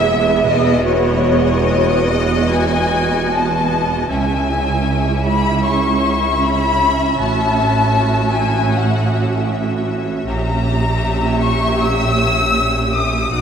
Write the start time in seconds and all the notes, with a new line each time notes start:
Already playing: E1 E2 B3 G#4 E5
0.48 D#5
0.85 F#4 C#5 D#5
2.09 D#5
2.52 G#5
3.32 A5
4.10 C#2 C#4 E4 E5 G#5
5.24 B5
5.64 C#6
6.42 B5
7.18 A1 A2 F#4 A5
8.33 G#5
8.71 F#5
10.26 A#1 A#2 C#4 G4 E5 A#5
11.40 C#6
11.80 E6
12.96 D#6
13.31 B1 B2 D#4 F#4 F#5